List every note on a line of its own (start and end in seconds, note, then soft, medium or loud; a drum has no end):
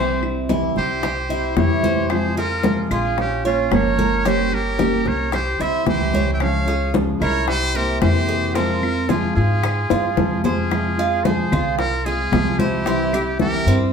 0.00 0.70 C2 medium
0.00 0.21 C3 medium
0.00 0.21 E3 medium
0.00 0.22 G3 medium
0.00 0.22 C4 medium
0.00 0.48 C4 medium
0.00 0.21 E4 medium
0.00 0.22 G4 medium
0.00 0.23 C5 medium
0.23 0.49 G3 soft
0.23 0.49 C4 soft
0.23 0.48 E4 soft
0.23 high conga soft
0.23 claves medium
0.49 0.75 C3 medium
0.49 0.75 E3 medium
0.49 0.75 G3 medium
0.49 0.76 C4 medium
0.49 1.02 E4 medium
0.49 0.75 E4 medium
0.49 high bongo medium
0.49 high conga medium
0.76 1.53 C2 medium
0.76 1.02 G3 soft
0.76 1.02 C4 soft
0.76 1.02 E4 soft
0.76 1.53 G4 medium
0.76 1.53 C5 medium
0.76 high bongo soft
0.76 high conga soft
1.02 1.29 G4 medium
1.02 muted nylon-string guitar stroke medium
1.02 high bongo medium
1.02 high conga soft
1.02 claves medium
1.29 1.56 G3 soft
1.29 1.56 C4 soft
1.29 1.55 E4 soft
1.29 1.82 E4 medium
1.29 high bongo soft
1.29 high conga soft
1.56 2.84 F2 medium
1.56 2.09 C3 medium
1.56 2.09 E3 medium
1.56 2.10 G3 medium
1.56 2.10 E4 medium
1.56 2.13 G4 medium
1.56 2.13 C#5 medium
1.56 high bongo medium
1.56 low bongo medium
1.56 high conga medium
1.83 2.36 C5 medium
1.83 high bongo soft
1.83 high conga medium
2.10 2.36 C3 medium
2.10 2.36 F3 medium
2.10 2.36 G#3 medium
2.10 2.36 C4 medium
2.10 2.35 F4 medium
2.10 2.38 G#4 medium
2.10 2.37 C5 medium
2.10 high bongo medium
2.10 high conga soft
2.10 claves medium
2.36 2.63 G#3 soft
2.36 2.63 C4 soft
2.36 2.63 F4 soft
2.36 2.88 F4 medium
2.36 2.89 G#4 medium
2.36 2.88 A#4 medium
2.36 high conga soft
2.63 2.90 C3 medium
2.63 2.90 F3 medium
2.63 2.90 G#3 medium
2.63 2.90 C4 medium
2.63 2.90 F4 medium
2.63 high bongo medium
2.63 high conga medium
2.91 3.67 A#1 medium
2.91 3.17 G#3 soft
2.91 3.17 C4 soft
2.91 3.17 F4 soft
2.91 3.43 F4 medium
2.91 3.17 F4 medium
2.91 3.17 G#4 medium
2.91 high conga soft
2.91 claves medium
3.17 3.43 C#4 medium
3.17 3.44 G4 medium
3.17 muted nylon-string guitar stroke medium
3.17 high bongo medium
3.17 high conga soft
3.44 3.71 A#3 soft
3.44 3.71 C#4 soft
3.44 3.73 C#4 medium
3.44 3.70 F4 soft
3.44 3.74 F4 medium
3.44 3.97 C#5 medium
3.44 high conga soft
3.71 4.99 G1 medium
3.71 4.24 F3 medium
3.71 4.25 A#3 medium
3.71 4.25 C#4 medium
3.71 4.25 F4 medium
3.71 4.28 A#4 medium
3.71 4.29 C#5 medium
3.71 high bongo medium
3.71 low bongo medium
3.71 high conga medium
3.71 claves medium
3.98 4.25 A#4 medium
3.98 high conga medium
4.25 4.51 G3 medium
4.25 4.52 A#3 medium
4.25 4.78 C#4 medium
4.25 4.52 C#4 medium
4.25 4.52 G4 medium
4.25 4.51 G4 medium
4.25 4.56 C5 medium
4.25 high bongo medium
4.25 high conga soft
4.52 4.78 A#3 soft
4.52 4.79 C#4 soft
4.52 4.78 G4 soft
4.52 5.08 G4 medium
4.52 5.09 A#4 medium
4.52 high conga soft
4.52 claves medium
4.78 5.05 G3 medium
4.78 5.05 A#3 medium
4.78 5.05 C#4 medium
4.78 5.32 G4 medium
4.78 5.04 G4 medium
4.78 high bongo medium
4.78 high conga medium
5.05 5.56 C2 medium
5.05 5.32 A#3 soft
5.05 5.32 C#4 soft
5.05 5.31 G4 soft
5.05 5.32 A#4 medium
5.05 5.34 C#5 medium
5.05 high bongo soft
5.05 high conga soft
5.32 5.61 G4 medium
5.32 5.59 G4 medium
5.32 5.63 C5 medium
5.32 muted nylon-string guitar stroke medium
5.32 high bongo medium
5.32 high conga soft
5.32 claves medium
5.59 5.85 C2 medium
5.59 5.85 G3 soft
5.59 5.85 C4 soft
5.59 5.85 E4 soft
5.59 6.13 E4 medium
5.59 5.87 C5 medium
5.59 5.87 E5 loud
5.59 high bongo soft
5.59 high conga soft
5.85 7.15 C#2 medium
5.85 6.39 C3 medium
5.85 6.39 E3 medium
5.85 6.40 G3 medium
5.85 6.40 C4 medium
5.85 6.40 E4 medium
5.85 6.31 G4 medium
5.85 6.31 C5 medium
5.85 high bongo medium
5.85 low bongo medium
5.85 high conga medium
6.13 6.66 C#5 medium
6.13 high bongo soft
6.13 high conga medium
6.33 6.42 E5 medium
6.33 6.43 G5 medium
6.40 6.66 C#3 medium
6.40 6.66 F3 medium
6.40 6.67 G#3 medium
6.40 6.67 C#4 medium
6.40 6.66 F4 medium
6.40 6.94 C#5 medium
6.40 6.95 F5 loud
6.40 high bongo medium
6.40 high conga soft
6.40 claves medium
6.67 6.94 G#3 soft
6.67 6.94 C#4 soft
6.67 6.93 F4 soft
6.67 7.20 G#4 medium
6.67 high conga soft
6.94 7.20 C#3 medium
6.94 7.20 F3 medium
6.94 7.21 G#3 medium
6.94 7.20 C#4 medium
6.94 7.19 F4 medium
6.94 high bongo medium
6.94 high conga medium
7.20 7.98 C2 medium
7.20 7.47 G#3 soft
7.20 7.47 C#4 soft
7.20 7.74 E4 medium
7.20 7.47 F4 soft
7.20 7.50 A#4 medium
7.20 7.50 C#5 medium
7.20 high conga soft
7.20 claves medium
7.47 7.75 G4 medium
7.47 7.77 C5 loud
7.47 muted nylon-string guitar stroke medium
7.47 high bongo medium
7.47 high conga soft
7.74 8.01 A#3 soft
7.74 8.01 C4 soft
7.74 8.01 E4 soft
7.74 8.00 G4 medium
7.74 8.00 A#4 medium
7.74 8.27 C5 medium
7.74 high conga soft
8.00 9.30 F2 medium
8.00 8.54 C3 medium
8.00 8.55 E3 medium
8.00 8.55 A#3 medium
8.00 8.55 C4 medium
8.00 8.55 E4 medium
8.00 8.56 G4 medium
8.00 8.56 C5 loud
8.00 high bongo medium
8.00 low bongo medium
8.00 high conga medium
8.00 claves medium
8.29 8.55 G#4 medium
8.54 8.82 C3 medium
8.54 8.82 F3 medium
8.54 8.82 G#3 medium
8.54 9.08 C4 medium
8.54 8.82 C4 medium
8.54 9.08 F4 medium
8.54 8.82 F4 medium
8.54 9.11 A#4 medium
8.54 high bongo medium
8.54 high conga soft
8.83 9.10 G#3 soft
8.83 9.09 C4 soft
8.83 9.09 F4 soft
8.83 high conga soft
8.83 claves medium
9.08 9.36 C3 medium
9.08 9.36 F3 medium
9.08 9.36 G#3 medium
9.08 9.36 C4 medium
9.08 9.34 F4 medium
9.08 9.62 F4 medium
9.08 9.36 F4 medium
9.08 9.35 G#4 medium
9.08 high bongo medium
9.08 high conga medium
9.35 9.87 G#2 medium
9.35 9.63 G#3 soft
9.35 9.63 C4 soft
9.35 10.40 F4 medium
9.35 9.63 F4 soft
9.35 10.40 G#4 medium
9.35 high bongo soft
9.35 high conga soft
9.63 9.90 G#4 medium
9.63 muted nylon-string guitar stroke medium
9.63 high bongo medium
9.63 high conga soft
9.63 claves medium
9.90 10.16 G2 medium
9.90 10.17 G#3 soft
9.90 10.17 C4 soft
9.90 10.17 F4 soft
9.90 10.43 F4 medium
9.90 high bongo medium
9.90 high conga soft
10.17 11.45 F2 medium
10.17 10.70 C3 medium
10.17 10.70 F3 medium
10.17 10.71 G#3 medium
10.17 10.71 C4 medium
10.17 10.71 F4 medium
10.17 high bongo medium
10.17 high conga medium
10.44 11.27 F4 medium
10.44 11.25 G#4 medium
10.44 10.71 C5 medium
10.44 low bongo medium
10.44 high conga medium
10.71 10.97 C3 medium
10.71 10.97 F3 medium
10.71 10.97 G#3 medium
10.71 10.98 C4 medium
10.71 10.97 F4 medium
10.71 high bongo medium
10.71 high conga soft
10.71 claves medium
10.98 11.25 G#3 soft
10.98 11.24 C4 soft
10.98 11.24 F4 soft
10.98 11.25 F4 medium
10.98 high conga soft
11.24 11.51 C3 medium
11.24 11.51 F3 medium
11.24 11.51 G#3 medium
11.24 11.52 C4 medium
11.24 11.51 F4 medium
11.24 11.51 G#4 medium
11.24 11.79 G#4 medium
11.24 11.77 C5 medium
11.24 high bongo medium
11.24 high conga medium
11.52 12.29 C2 medium
11.52 11.78 G#3 soft
11.52 11.78 C4 soft
11.52 11.78 F4 soft
11.52 12.05 F4 medium
11.52 high conga soft
11.52 low conga medium
11.52 claves medium
11.78 12.06 F4 medium
11.78 12.07 A#4 medium
11.78 muted nylon-string guitar stroke medium
11.78 high bongo medium
11.78 high conga soft
12.05 12.32 G#3 soft
12.05 12.32 C4 medium
12.05 12.31 F4 medium
12.05 12.62 F4 medium
12.05 12.60 G#4 medium
12.05 12.58 G#4 medium
12.05 high conga soft
12.32 13.60 C2 medium
12.32 12.85 C3 medium
12.32 12.85 F3 medium
12.32 12.86 G#3 medium
12.32 12.86 C4 medium
12.32 12.86 F4 medium
12.32 high bongo medium
12.32 low bongo medium
12.32 high conga medium
12.32 claves medium
12.59 13.40 E4 medium
12.59 13.40 G4 medium
12.59 12.86 C5 medium
12.59 high conga medium
12.86 13.12 C3 medium
12.86 13.12 E3 medium
12.86 13.12 G3 medium
12.86 13.13 C4 medium
12.86 13.12 E4 medium
12.86 high bongo medium
12.86 high conga soft
13.13 13.40 G3 soft
13.13 13.39 C4 soft
13.13 13.39 E4 soft
13.13 13.66 G4 medium
13.13 high bongo soft
13.13 high conga soft
13.13 claves medium
13.39 13.65 C3 medium
13.39 13.66 E3 medium
13.39 13.66 G3 medium
13.39 13.66 C4 medium
13.39 13.65 E4 medium
13.39 13.79 G4 medium
13.39 13.79 A#4 medium
13.39 high bongo medium
13.39 high conga medium
13.66 13.93 G2 loud
13.66 13.93 G3 soft
13.66 13.93 C4 soft
13.66 13.93 C4 medium
13.66 13.92 E4 soft
13.66 high bongo soft
13.66 high conga soft